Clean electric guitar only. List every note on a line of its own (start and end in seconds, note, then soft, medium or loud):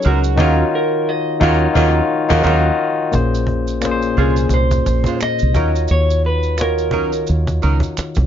0.07 0.75 F#4 loud
0.75 1.09 A#4 medium
1.09 1.73 D#5 medium
4.19 4.53 G#4 medium
4.54 5.22 C5 medium
5.22 5.91 D#5 medium
5.91 6.26 C#5 loud
6.26 6.60 B4 medium
6.62 7.25 A#4 medium